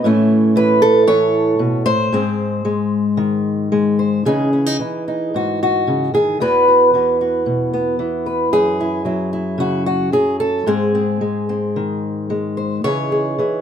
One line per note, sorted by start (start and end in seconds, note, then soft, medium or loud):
0.04 1.84 A2 medium
0.04 0.55 E3 medium
0.04 2.13 A3 medium
0.04 0.82 C#4 medium
0.56 1.06 E3 medium
0.56 1.07 B4 loud
0.82 1.60 A4 loud
1.07 1.59 E3 medium
1.07 1.85 C#5 loud
1.59 1.86 B2 medium
1.86 2.12 A2 medium
1.86 3.98 C5 loud
2.12 4.23 G#2 medium
2.12 2.64 G#3 medium
2.12 4.23 C4 medium
2.65 3.71 G#3 medium
3.17 4.22 D#3 medium
3.72 4.23 G#3 medium
3.99 4.23 C5 soft
4.25 4.80 C#3 medium
4.25 4.79 E3 soft
4.25 4.52 C#4 soft
4.25 4.53 D#4 soft
4.25 5.34 G#4 medium
4.53 4.66 C#4 soft
4.66 4.79 D#4 soft
4.79 6.41 E3 soft
4.79 5.07 D#4 soft
5.08 6.38 D#4 soft
5.34 6.38 G#2 soft
5.34 5.62 F#4 medium
5.63 6.14 F#4 medium
5.87 6.13 C#3 medium
6.14 6.41 D#3 medium
6.14 6.41 G#4 medium
6.40 8.52 E2 medium
6.40 6.93 E3 soft
6.40 7.72 B3 soft
6.40 6.68 F#4 soft
6.40 8.01 B4 medium
6.68 6.94 F#4 soft
6.94 7.98 E3 soft
6.94 7.21 F#4 soft
7.21 8.51 F#4 soft
7.46 8.00 B2 soft
7.74 8.50 B3 soft
7.99 9.05 E3 medium
8.26 8.50 B4 soft
8.53 10.63 F#2 medium
8.53 9.60 G#4 medium
8.80 9.05 E4 soft
9.05 10.11 F#3 soft
9.05 9.32 E4 soft
9.33 10.64 E4 soft
9.58 10.12 C#3 medium
9.58 9.85 F#4 medium
9.86 10.13 F#4 medium
10.12 10.63 F#3 soft
10.12 10.40 G#4 medium
10.40 10.67 A4 medium
10.66 12.81 G#2 medium
10.66 11.21 G#3 soft
10.66 10.94 C4 soft
10.66 12.30 G#4 medium
10.95 11.48 C4 soft
11.21 12.29 G#3 soft
11.49 12.81 C4 soft
11.76 12.81 D#3 soft
12.30 12.81 G#3 medium
12.57 12.81 C5 soft
12.84 13.38 C#3 medium
12.84 13.37 E3 soft
12.84 13.61 D#4 soft
12.84 13.11 G#4 soft
12.84 13.61 C#5 medium
13.12 13.38 G#4 soft
13.39 13.61 E3 soft
13.39 13.61 G#4 soft